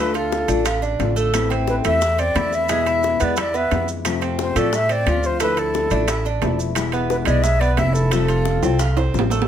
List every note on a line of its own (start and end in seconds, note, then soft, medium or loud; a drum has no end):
0.00 0.42 D2 medium
0.00 0.48 D3 medium
0.00 0.14 A3 medium
0.00 0.50 A3 medium
0.00 0.48 D4 medium
0.00 0.47 F4 medium
0.00 0.13 B4 medium
0.14 0.47 F4 medium
0.14 0.79 A4 medium
0.14 high bongo soft
0.14 high timbale medium
0.14 maracas soft
0.32 high bongo medium
0.32 maracas soft
0.48 0.95 A1 loud
0.48 0.65 A3 medium
0.48 0.65 D4 medium
0.48 0.65 F4 medium
0.48 high timbale medium
0.48 maracas medium
0.65 0.82 F4 medium
0.65 muted nylon-string guitar stroke medium
0.65 high bongo medium
0.65 high timbale medium
0.65 claves medium
0.65 maracas medium
0.82 1.15 D4 medium
0.82 high bongo soft
0.82 maracas soft
0.99 1.78 A1 medium
0.99 1.33 D3 soft
0.99 1.33 A3 medium
0.99 1.33 D4 medium
0.99 1.34 F4 medium
0.99 high bongo soft
0.99 low bongo medium
0.99 high timbale medium
0.99 maracas soft
1.16 1.49 A3 medium
1.16 high bongo soft
1.16 maracas medium
1.33 2.01 E3 medium
1.33 1.84 A3 medium
1.33 1.84 C4 medium
1.33 1.84 E4 medium
1.33 high bongo medium
1.33 high timbale medium
1.33 claves medium
1.33 maracas medium
1.50 1.83 C4 medium
1.50 high bongo soft
1.50 high timbale medium
1.50 maracas soft
1.67 1.75 B4 medium
1.67 high bongo medium
1.67 maracas soft
1.84 2.32 E2 loud
1.84 2.17 A3 medium
1.84 2.01 A3 medium
1.84 2.01 C4 medium
1.84 2.01 E4 medium
1.84 2.21 E5 loud
1.84 high timbale medium
1.84 claves medium
1.84 maracas medium
2.01 muted nylon-string guitar stroke medium
2.01 high bongo medium
2.01 maracas medium
2.18 2.35 C4 medium
2.18 2.56 D5 loud
2.18 high bongo soft
2.18 high timbale medium
2.18 maracas soft
2.35 3.14 E2 medium
2.35 2.68 E3 medium
2.35 2.69 A3 medium
2.35 2.69 C4 medium
2.35 2.68 E4 medium
2.35 2.69 E4 medium
2.35 high bongo soft
2.35 low bongo medium
2.35 high timbale loud
2.35 low timbale medium
2.35 claves medium
2.35 maracas soft
2.52 3.25 E5 loud
2.52 high bongo soft
2.52 maracas medium
2.69 3.19 B2 medium
2.69 3.20 E3 medium
2.69 2.86 G#3 medium
2.69 3.20 G#3 medium
2.69 3.20 B3 medium
2.69 3.19 E4 medium
2.69 high bongo medium
2.69 high timbale medium
2.69 claves medium
2.69 maracas medium
2.86 3.19 E4 medium
2.86 high bongo soft
2.86 high timbale medium
2.86 maracas soft
3.03 high bongo medium
3.03 maracas soft
3.20 3.68 E2 medium
3.20 3.37 E3 medium
3.20 3.37 G#3 medium
3.20 3.36 B3 medium
3.20 3.37 B3 medium
3.20 3.36 E4 medium
3.20 3.38 D5 medium
3.20 high timbale medium
3.20 maracas medium
3.36 3.53 E4 medium
3.36 3.57 D5 medium
3.36 muted nylon-string guitar stroke medium
3.36 high bongo medium
3.36 high timbale medium
3.36 claves medium
3.36 maracas medium
3.54 3.87 B3 medium
3.54 3.89 E5 medium
3.54 high bongo soft
3.54 maracas soft
3.71 4.50 F2 medium
3.71 4.04 E3 soft
3.71 4.04 G#3 medium
3.71 4.04 B3 medium
3.71 4.05 E4 medium
3.71 high bongo soft
3.71 low bongo medium
3.71 high timbale medium
3.71 low timbale medium
3.71 maracas soft
3.88 high bongo soft
3.88 maracas medium
4.05 4.55 C3 medium
4.05 4.57 F3 medium
4.05 4.56 A3 medium
4.05 4.55 C4 medium
4.05 4.55 F4 medium
4.05 high bongo medium
4.05 high timbale medium
4.05 claves medium
4.05 maracas medium
4.21 4.54 C4 medium
4.21 high bongo soft
4.21 high timbale medium
4.21 maracas soft
4.39 4.60 C5 loud
4.39 high bongo medium
4.39 maracas soft
4.55 5.03 A2 medium
4.55 4.71 F3 medium
4.55 4.89 A3 medium
4.55 4.72 A3 medium
4.55 4.72 C4 medium
4.55 4.72 F4 medium
4.55 4.77 D5 medium
4.55 high timbale medium
4.55 claves medium
4.55 maracas medium
4.73 4.93 E5 loud
4.73 muted nylon-string guitar stroke medium
4.73 high bongo medium
4.73 maracas medium
4.89 5.06 C4 medium
4.89 5.28 D5 loud
4.89 high bongo soft
4.89 high timbale medium
4.89 maracas soft
5.06 5.85 D2 medium
5.06 5.40 F3 soft
5.06 5.40 A3 soft
5.06 5.40 C4 soft
5.06 5.39 F4 medium
5.06 5.41 F4 medium
5.06 high bongo soft
5.06 low bongo medium
5.06 high timbale medium
5.06 claves medium
5.06 maracas soft
5.23 5.42 C5 medium
5.23 high bongo soft
5.23 maracas medium
5.40 5.91 D3 medium
5.40 5.91 F3 medium
5.40 5.57 A3 medium
5.40 5.91 A3 medium
5.40 5.90 D4 medium
5.40 5.90 E4 medium
5.40 5.60 B4 medium
5.40 high bongo medium
5.40 high timbale medium
5.40 claves medium
5.40 maracas medium
5.57 5.90 E4 medium
5.57 6.26 A4 medium
5.57 high bongo soft
5.57 high timbale medium
5.57 maracas soft
5.74 high bongo medium
5.74 maracas soft
5.90 6.38 A1 medium
5.90 6.07 F3 medium
5.90 6.07 A3 medium
5.90 6.08 D4 medium
5.90 6.07 D4 medium
5.90 6.07 E4 medium
5.90 high timbale medium
5.90 maracas medium
6.08 6.25 E4 medium
6.08 muted nylon-string guitar stroke medium
6.08 high bongo medium
6.08 high timbale medium
6.08 claves medium
6.08 maracas medium
6.25 6.59 D4 medium
6.25 high bongo soft
6.25 maracas soft
6.42 7.21 E1 medium
6.42 6.75 F3 soft
6.42 6.76 A3 medium
6.42 6.76 D4 medium
6.42 6.75 E4 medium
6.42 high bongo soft
6.42 low bongo medium
6.42 high timbale medium
6.42 low timbale medium
6.42 maracas soft
6.59 high bongo soft
6.59 maracas medium
6.75 7.26 B2 medium
6.75 7.26 E3 medium
6.75 7.26 G#3 medium
6.75 7.26 B3 medium
6.75 7.25 E4 medium
6.75 high bongo medium
6.75 high timbale medium
6.75 claves medium
6.75 maracas medium
6.92 7.26 B3 medium
6.92 high bongo soft
6.92 high timbale medium
6.92 maracas soft
7.10 7.16 B4 loud
7.10 high bongo medium
7.10 maracas soft
7.25 7.74 B1 loud
7.25 7.43 E3 medium
7.25 7.60 G#3 medium
7.25 7.43 G#3 medium
7.25 7.44 B3 medium
7.25 7.43 E4 medium
7.25 7.44 D5 medium
7.25 high timbale medium
7.25 claves medium
7.25 maracas medium
7.43 7.61 E5 loud
7.43 muted nylon-string guitar stroke medium
7.43 high bongo medium
7.43 maracas medium
7.60 7.78 B3 medium
7.60 7.76 D5 loud
7.60 high bongo soft
7.60 high timbale medium
7.60 maracas soft
7.76 8.57 F1 medium
7.76 8.11 E3 soft
7.76 8.12 G#3 medium
7.76 8.12 B3 medium
7.76 8.11 E4 medium
7.76 8.12 E4 medium
7.76 7.95 E5 loud
7.76 high bongo soft
7.76 low bongo medium
7.76 high timbale medium
7.76 low timbale medium
7.76 claves medium
7.76 maracas soft
7.94 9.13 A4 medium
7.94 high bongo soft
7.94 maracas medium
8.11 8.62 F3 medium
8.11 8.62 G3 medium
8.11 8.29 A3 medium
8.11 8.62 C4 medium
8.11 8.61 F4 medium
8.11 high bongo medium
8.11 high timbale medium
8.11 claves medium
8.11 maracas medium
8.28 8.62 F4 medium
8.28 high bongo soft
8.28 high timbale medium
8.28 maracas soft
8.45 high bongo medium
8.45 maracas soft
8.62 9.10 C2 medium
8.62 8.79 G3 medium
8.62 8.80 C4 medium
8.62 8.79 F4 medium
8.62 high timbale medium
8.62 maracas medium
8.79 8.96 F4 medium
8.79 muted nylon-string guitar stroke medium
8.79 high bongo medium
8.79 claves medium
8.79 maracas loud
8.97 9.30 C4 medium
8.97 high bongo soft
8.97 high timbale loud
8.97 maracas soft
9.13 9.48 A1 medium
9.13 9.47 F3 soft
9.13 9.47 G3 medium
9.13 9.48 C4 medium
9.13 9.48 F4 medium
9.13 high bongo soft
9.13 low bongo medium
9.13 maracas soft
9.19 low timbale medium
9.30 9.48 A3 medium
9.30 high bongo soft
9.30 low timbale medium
9.30 maracas medium
9.42 low timbale loud